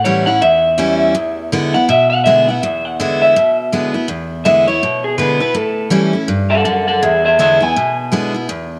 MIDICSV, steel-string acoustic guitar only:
0, 0, Header, 1, 2, 480
1, 0, Start_track
1, 0, Tempo, 366300
1, 1515, Time_signature, 4, 2, 24, 8
1, 11525, End_track
2, 0, Start_track
2, 0, Title_t, "Steel-string acoustic guitar"
2, 0, Program_c, 0, 25
2, 0, Note_on_c, 0, 45, 90
2, 65, Note_on_c, 0, 52, 90
2, 72, Note_on_c, 0, 55, 88
2, 78, Note_on_c, 0, 61, 82
2, 80, Note_on_c, 0, 64, 97
2, 337, Note_off_c, 0, 64, 0
2, 348, Note_off_c, 0, 52, 0
2, 351, Note_off_c, 0, 55, 0
2, 353, Note_on_c, 0, 64, 61
2, 354, Note_off_c, 0, 61, 0
2, 373, Note_on_c, 0, 61, 50
2, 514, Note_off_c, 0, 45, 0
2, 542, Note_off_c, 0, 64, 0
2, 549, Note_on_c, 0, 40, 84
2, 552, Note_off_c, 0, 61, 0
2, 1019, Note_on_c, 0, 52, 96
2, 1023, Note_on_c, 0, 55, 96
2, 1034, Note_on_c, 0, 61, 95
2, 1040, Note_on_c, 0, 64, 90
2, 1474, Note_off_c, 0, 40, 0
2, 1488, Note_off_c, 0, 52, 0
2, 1490, Note_off_c, 0, 55, 0
2, 1495, Note_off_c, 0, 61, 0
2, 1499, Note_off_c, 0, 64, 0
2, 1502, Note_on_c, 0, 40, 95
2, 1996, Note_on_c, 0, 50, 91
2, 2006, Note_on_c, 0, 59, 97
2, 2007, Note_on_c, 0, 56, 86
2, 2008, Note_on_c, 0, 64, 101
2, 2269, Note_off_c, 0, 64, 0
2, 2273, Note_off_c, 0, 50, 0
2, 2278, Note_off_c, 0, 56, 0
2, 2278, Note_off_c, 0, 59, 0
2, 2285, Note_on_c, 0, 64, 63
2, 2304, Note_on_c, 0, 59, 59
2, 2430, Note_off_c, 0, 40, 0
2, 2467, Note_off_c, 0, 64, 0
2, 2472, Note_on_c, 0, 47, 90
2, 2477, Note_off_c, 0, 59, 0
2, 2957, Note_on_c, 0, 50, 86
2, 2970, Note_on_c, 0, 56, 84
2, 2975, Note_on_c, 0, 59, 96
2, 2976, Note_on_c, 0, 64, 100
2, 3233, Note_off_c, 0, 50, 0
2, 3239, Note_off_c, 0, 56, 0
2, 3242, Note_off_c, 0, 59, 0
2, 3242, Note_off_c, 0, 64, 0
2, 3256, Note_on_c, 0, 64, 66
2, 3275, Note_on_c, 0, 59, 53
2, 3394, Note_off_c, 0, 47, 0
2, 3432, Note_off_c, 0, 64, 0
2, 3442, Note_off_c, 0, 59, 0
2, 3447, Note_on_c, 0, 40, 101
2, 3926, Note_on_c, 0, 50, 87
2, 3931, Note_on_c, 0, 56, 93
2, 3939, Note_on_c, 0, 59, 91
2, 3943, Note_on_c, 0, 64, 106
2, 4361, Note_off_c, 0, 40, 0
2, 4380, Note_off_c, 0, 50, 0
2, 4382, Note_off_c, 0, 56, 0
2, 4387, Note_off_c, 0, 59, 0
2, 4389, Note_off_c, 0, 64, 0
2, 4407, Note_on_c, 0, 47, 90
2, 4880, Note_on_c, 0, 50, 80
2, 4885, Note_on_c, 0, 56, 89
2, 4891, Note_on_c, 0, 59, 92
2, 4893, Note_on_c, 0, 64, 97
2, 5149, Note_off_c, 0, 64, 0
2, 5154, Note_off_c, 0, 50, 0
2, 5156, Note_off_c, 0, 56, 0
2, 5159, Note_off_c, 0, 59, 0
2, 5165, Note_on_c, 0, 64, 65
2, 5177, Note_on_c, 0, 59, 53
2, 5321, Note_off_c, 0, 47, 0
2, 5346, Note_off_c, 0, 64, 0
2, 5348, Note_on_c, 0, 40, 88
2, 5353, Note_off_c, 0, 59, 0
2, 5831, Note_on_c, 0, 50, 84
2, 5836, Note_on_c, 0, 56, 94
2, 5842, Note_on_c, 0, 64, 98
2, 5843, Note_on_c, 0, 59, 89
2, 6109, Note_off_c, 0, 50, 0
2, 6112, Note_off_c, 0, 56, 0
2, 6115, Note_off_c, 0, 59, 0
2, 6115, Note_off_c, 0, 64, 0
2, 6128, Note_on_c, 0, 64, 72
2, 6149, Note_on_c, 0, 59, 49
2, 6272, Note_off_c, 0, 40, 0
2, 6308, Note_off_c, 0, 64, 0
2, 6318, Note_off_c, 0, 59, 0
2, 6328, Note_on_c, 0, 47, 85
2, 6786, Note_on_c, 0, 50, 81
2, 6789, Note_on_c, 0, 56, 80
2, 6801, Note_on_c, 0, 59, 89
2, 6805, Note_on_c, 0, 64, 87
2, 7063, Note_off_c, 0, 64, 0
2, 7067, Note_off_c, 0, 50, 0
2, 7069, Note_off_c, 0, 56, 0
2, 7074, Note_off_c, 0, 59, 0
2, 7079, Note_on_c, 0, 64, 64
2, 7091, Note_on_c, 0, 59, 54
2, 7242, Note_off_c, 0, 47, 0
2, 7264, Note_off_c, 0, 64, 0
2, 7266, Note_on_c, 0, 45, 91
2, 7269, Note_off_c, 0, 59, 0
2, 7735, Note_on_c, 0, 52, 91
2, 7744, Note_on_c, 0, 55, 93
2, 7753, Note_on_c, 0, 61, 96
2, 7757, Note_on_c, 0, 64, 97
2, 8018, Note_off_c, 0, 64, 0
2, 8022, Note_off_c, 0, 52, 0
2, 8027, Note_off_c, 0, 55, 0
2, 8031, Note_off_c, 0, 61, 0
2, 8033, Note_on_c, 0, 64, 59
2, 8056, Note_on_c, 0, 61, 52
2, 8192, Note_off_c, 0, 45, 0
2, 8221, Note_off_c, 0, 64, 0
2, 8229, Note_on_c, 0, 43, 92
2, 8232, Note_off_c, 0, 61, 0
2, 8693, Note_off_c, 0, 43, 0
2, 8716, Note_on_c, 0, 42, 83
2, 9176, Note_off_c, 0, 42, 0
2, 9205, Note_on_c, 0, 40, 93
2, 9682, Note_on_c, 0, 50, 81
2, 9687, Note_on_c, 0, 56, 95
2, 9693, Note_on_c, 0, 59, 94
2, 9704, Note_on_c, 0, 64, 91
2, 9949, Note_off_c, 0, 64, 0
2, 9956, Note_off_c, 0, 50, 0
2, 9959, Note_off_c, 0, 56, 0
2, 9962, Note_off_c, 0, 59, 0
2, 9964, Note_on_c, 0, 64, 64
2, 9985, Note_on_c, 0, 59, 52
2, 10123, Note_off_c, 0, 40, 0
2, 10148, Note_off_c, 0, 64, 0
2, 10158, Note_off_c, 0, 59, 0
2, 10174, Note_on_c, 0, 47, 93
2, 10635, Note_on_c, 0, 50, 80
2, 10645, Note_on_c, 0, 56, 89
2, 10645, Note_on_c, 0, 59, 88
2, 10653, Note_on_c, 0, 64, 95
2, 10914, Note_off_c, 0, 50, 0
2, 10918, Note_off_c, 0, 64, 0
2, 10919, Note_off_c, 0, 56, 0
2, 10919, Note_off_c, 0, 59, 0
2, 10934, Note_on_c, 0, 64, 67
2, 10951, Note_on_c, 0, 59, 50
2, 11088, Note_off_c, 0, 47, 0
2, 11113, Note_off_c, 0, 64, 0
2, 11122, Note_off_c, 0, 59, 0
2, 11125, Note_on_c, 0, 40, 94
2, 11525, Note_off_c, 0, 40, 0
2, 11525, End_track
0, 0, End_of_file